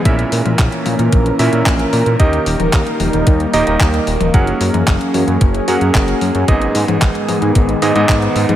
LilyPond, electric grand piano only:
\new Staff \with { instrumentName = "Electric grand piano" } { \time 4/4 \key gis \minor \tempo 4 = 112 <ais, cis' e' ais' e''>2~ <ais, cis' e' ais' e''>8 <ais, cis' e' ais' e''>4. | <dis ais dis' g' dis''>2~ <dis ais dis' g' dis''>8 <dis ais dis' g' dis''>16 <dis ais dis' g' dis''>4~ <dis ais dis' g' dis''>16 | <fis cis' gis' ais' fis''>2~ <fis cis' gis' ais' fis''>8 <fis cis' gis' ais' fis''>4. | <gis, b dis' gis' dis''>2~ <gis, b dis' gis' dis''>8 <gis, b dis' gis' dis''>16 <gis, b dis' gis' dis''>4~ <gis, b dis' gis' dis''>16 | }